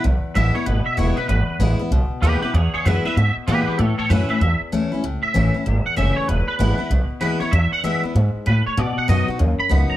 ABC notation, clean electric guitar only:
X:1
M:4/4
L:1/8
Q:"Swing" 1/4=192
K:E
V:1 name="Clean electric guitar"
z2 e c B e c B | B2 z4 [=GB] [GB] | [Gc] [Gc] [Be] [Be] e z [=GB] [GB] | [Ac] [Ac] [Be] [Be] e z3 |
z e4 f e c | B B4 z B c | e f e z3 B c | =d f ^d z2 b2 ^a |]